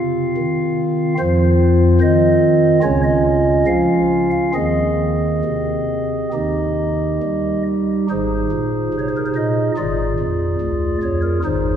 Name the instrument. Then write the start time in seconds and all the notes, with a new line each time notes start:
pipe organ
Already playing: C3 C4 F4 F5
0.38 D#3
1.19 F2 F3 C4 F4 C5
2.01 D#3 D#5
2.83 C#2 C#3 C#4 F4 C#5
3.04 D#5
3.67 F3 F5
4.31 F5
4.54 D#2 D#3 C4 G#4 D#5
5.45 C3
6.33 D#2 D#3 D#4 G4
7.22 G3
8.10 G#1 G#2 D#4 G#4 C5
8.52 A#2
8.93 C3
8.99 C#5
9.09 C5
9.17 A#4
9.26 C5
9.36 A#2 D#5
9.77 G#1 G#2 F4 G#4 D5
10.19 F2
10.61 D2
11.03 F2 C#5
11.23 A#4
11.44 G#1 G#2 D#4 G#4 C5